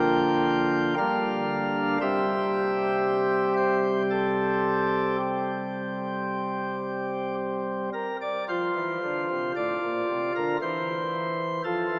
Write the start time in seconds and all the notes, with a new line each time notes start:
Already playing: D3 F3 A#3 F4 G5
0.97 D3 G3 A#3 D4 F5
2.01 C2 C3 G3 C4 G4 E5
3.57 C5
4.10 A4
5.20 G4
7.93 A#4
8.21 D5
8.48 F3 F4 C5
8.76 E3
9.03 D3
9.30 C3
9.56 A2 D5
9.83 A#2
10.09 C3
10.36 D3 A#4
10.62 E3 C5
11.64 F3 F4 A4
11.91 E3